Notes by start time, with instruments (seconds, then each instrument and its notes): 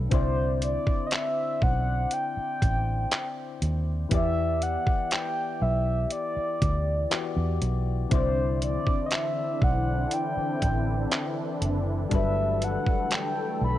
0.09 fingered electric bass C2, synth keys D3 C4 E4, kick, closed hi-hat
0.13 soft synth lead C5, synth keys C5 D5
0.62 soft synth lead D5, closed hi-hat
0.87 kick
1.07 soft synth lead D#5
1.11 soft synth lead E5, clap, closed hi-hat
1.62 fingered electric bass B1, soft synth lead F#5, kick
2.11 soft synth lead G5, closed hi-hat
2.37 muted fingered electric bass stroke
2.62 fingered electric bass A1, kick, closed hi-hat
3.11 clap, closed hi-hat
3.62 fingered electric bass D#2, closed hi-hat
4.09 fingered electric bass E2, synth keys E3 B3 E4, kick, closed hi-hat
4.13 synth keys G4 D5, soft synth lead E5
4.62 soft synth lead F#5, closed hi-hat
4.87 kick
5.11 soft synth lead G5, clap, closed hi-hat
5.62 fingered electric bass B1, soft synth lead E5
6.11 soft synth lead D5, closed hi-hat
6.37 muted fingered electric bass stroke
6.62 fingered electric bass D2, kick, closed hi-hat
7.10 synth keys E3 B3 F#4 G4 D5, clap, closed hi-hat
7.37 fingered electric bass E2
7.62 fingered electric bass B1, closed hi-hat
8.09 fingered electric bass C2, synth keys D3 C4 E4, analog synth pad D3 E3 C4 D4 E4, kick, closed hi-hat
8.13 synth keys C5 D5, soft synth lead C5
8.62 soft synth lead D5, closed hi-hat
8.87 kick
9.06 soft synth lead D#5
9.11 soft synth lead E5, clap, closed hi-hat
9.62 fingered electric bass B1, soft synth lead F#5, kick
10.11 soft synth lead G5, closed hi-hat
10.37 muted fingered electric bass stroke
10.62 fingered electric bass A1, kick, closed hi-hat
11.12 clap, closed hi-hat
11.61 fingered electric bass F#1, closed hi-hat
12.09 fingered electric bass G1, synth keys F#3 G3 D4, analog synth pad A3 A4, kick, closed hi-hat
12.13 synth keys A4 B4, soft synth lead E5
12.62 soft synth lead F#5, closed hi-hat
12.87 kick
13.11 soft synth lead G5, clap, closed hi-hat
13.61 fingered electric bass B1, soft synth lead B5